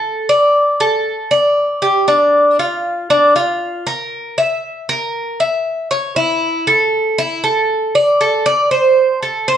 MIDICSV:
0, 0, Header, 1, 2, 480
1, 0, Start_track
1, 0, Key_signature, -1, "minor"
1, 0, Tempo, 510204
1, 40, Time_signature, 4, 2, 24, 8
1, 9006, End_track
2, 0, Start_track
2, 0, Title_t, "Cuban tres"
2, 0, Program_c, 0, 25
2, 0, Note_on_c, 0, 69, 73
2, 264, Note_off_c, 0, 69, 0
2, 274, Note_on_c, 0, 74, 78
2, 743, Note_off_c, 0, 74, 0
2, 755, Note_on_c, 0, 69, 74
2, 1224, Note_off_c, 0, 69, 0
2, 1232, Note_on_c, 0, 74, 75
2, 1702, Note_off_c, 0, 74, 0
2, 1712, Note_on_c, 0, 67, 73
2, 1950, Note_off_c, 0, 67, 0
2, 1955, Note_on_c, 0, 62, 77
2, 2424, Note_off_c, 0, 62, 0
2, 2440, Note_on_c, 0, 65, 70
2, 2906, Note_off_c, 0, 65, 0
2, 2918, Note_on_c, 0, 62, 77
2, 3153, Note_off_c, 0, 62, 0
2, 3158, Note_on_c, 0, 65, 72
2, 3625, Note_off_c, 0, 65, 0
2, 3637, Note_on_c, 0, 70, 78
2, 4105, Note_off_c, 0, 70, 0
2, 4120, Note_on_c, 0, 76, 77
2, 4586, Note_off_c, 0, 76, 0
2, 4601, Note_on_c, 0, 70, 76
2, 5067, Note_off_c, 0, 70, 0
2, 5081, Note_on_c, 0, 76, 74
2, 5547, Note_off_c, 0, 76, 0
2, 5558, Note_on_c, 0, 73, 77
2, 5793, Note_off_c, 0, 73, 0
2, 5797, Note_on_c, 0, 64, 79
2, 6265, Note_off_c, 0, 64, 0
2, 6277, Note_on_c, 0, 69, 70
2, 6745, Note_off_c, 0, 69, 0
2, 6759, Note_on_c, 0, 64, 79
2, 6993, Note_off_c, 0, 64, 0
2, 6996, Note_on_c, 0, 69, 72
2, 7465, Note_off_c, 0, 69, 0
2, 7480, Note_on_c, 0, 74, 74
2, 7714, Note_off_c, 0, 74, 0
2, 7721, Note_on_c, 0, 69, 73
2, 7954, Note_off_c, 0, 69, 0
2, 7957, Note_on_c, 0, 74, 100
2, 8192, Note_off_c, 0, 74, 0
2, 8195, Note_on_c, 0, 72, 77
2, 8645, Note_off_c, 0, 72, 0
2, 8679, Note_on_c, 0, 69, 63
2, 8913, Note_off_c, 0, 69, 0
2, 8918, Note_on_c, 0, 72, 96
2, 9006, Note_off_c, 0, 72, 0
2, 9006, End_track
0, 0, End_of_file